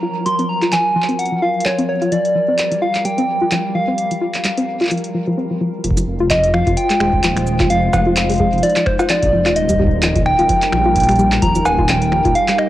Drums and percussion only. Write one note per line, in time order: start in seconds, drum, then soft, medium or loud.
0.26 closed hi-hat medium
0.39 closed hi-hat soft
0.62 clap medium
0.62 closed hi-hat soft
0.72 clap loud
0.72 closed hi-hat medium
1.02 clap medium
1.09 closed hi-hat soft
1.19 closed hi-hat medium
1.25 closed hi-hat soft
1.60 closed hi-hat medium
1.65 clap loud
1.78 closed hi-hat soft
2.02 closed hi-hat soft
2.12 closed hi-hat medium
2.25 closed hi-hat soft
2.58 clap loud
2.58 closed hi-hat medium
2.72 closed hi-hat medium
2.95 clap medium
2.95 closed hi-hat soft
3.05 closed hi-hat medium
3.18 closed hi-hat soft
3.52 clap loud
3.52 closed hi-hat medium
3.98 closed hi-hat medium
4.11 closed hi-hat medium
4.34 clap medium
4.34 closed hi-hat soft
4.44 clap loud
4.44 closed hi-hat medium
4.58 closed hi-hat medium
4.81 clap soft
4.81 closed hi-hat soft
4.83 clap soft
4.85 clap soft
4.85 closed hi-hat soft
4.87 clap soft
4.89 clap soft
4.89 closed hi-hat medium
4.98 closed hi-hat soft
5.04 closed hi-hat soft
5.84 closed hi-hat medium
5.91 kick loud
5.97 closed hi-hat medium
5.97 shaker medium
6.31 kick loud
6.31 clap loud
6.31 closed hi-hat medium
6.44 closed hi-hat medium
6.54 finger snap medium
6.67 kick loud
6.67 closed hi-hat soft
6.77 closed hi-hat medium
6.90 clap medium
6.90 closed hi-hat medium
7.00 finger snap medium
7.13 kick loud
7.24 clap loud
7.24 closed hi-hat medium
7.37 finger snap medium
7.37 closed hi-hat medium
7.47 shaker medium
7.60 finger snap medium
7.60 kick loud
7.60 clap medium
7.60 closed hi-hat soft
7.70 closed hi-hat medium
7.93 kick loud
7.93 cowbell medium
7.93 shaker medium
8.17 clap loud
8.17 closed hi-hat medium
8.30 closed hi-hat medium
8.32 closed hi-hat soft
8.34 closed hi-hat soft
8.36 closed hi-hat soft
8.40 kick loud
8.53 closed hi-hat soft
8.58 closed hi-hat soft
8.63 closed hi-hat medium
8.70 closed hi-hat soft
8.76 finger snap medium
8.76 clap medium
8.76 closed hi-hat medium
8.86 finger snap medium
8.86 kick loud
8.99 cowbell medium
8.99 shaker medium
9.09 clap loud
9.09 closed hi-hat medium
9.23 kick loud
9.23 closed hi-hat medium
9.46 finger snap medium
9.46 clap medium
9.46 closed hi-hat soft
9.56 closed hi-hat medium
9.69 kick soft
9.69 closed hi-hat medium
9.69 shaker medium
9.72 kick medium
9.76 kick medium
9.79 kick medium
9.84 kick medium
9.87 kick loud
10.03 clap loud
10.03 closed hi-hat medium
10.16 kick loud
10.16 closed hi-hat medium
10.26 finger snap medium
10.39 closed hi-hat soft
10.49 kick loud
10.49 closed hi-hat medium
10.62 clap medium
10.62 closed hi-hat medium
10.72 finger snap medium
10.96 kick loud
10.96 closed hi-hat medium
11.00 closed hi-hat medium
11.03 closed hi-hat medium
11.09 finger snap medium
11.09 closed hi-hat medium
11.11 closed hi-hat soft
11.16 closed hi-hat soft
11.16 shaker medium
11.32 finger snap medium
11.32 clap medium
11.32 closed hi-hat soft
11.42 kick loud
11.42 closed hi-hat medium
11.55 closed hi-hat medium
11.55 shaker medium
11.65 cowbell medium
11.65 shaker medium
11.78 kick loud
11.89 clap loud
11.89 closed hi-hat medium
12.02 closed hi-hat medium
12.12 finger snap medium
12.25 kick loud
12.25 closed hi-hat soft
12.35 closed hi-hat medium
12.48 finger snap medium
12.48 clap medium
12.48 closed hi-hat medium
12.58 finger snap medium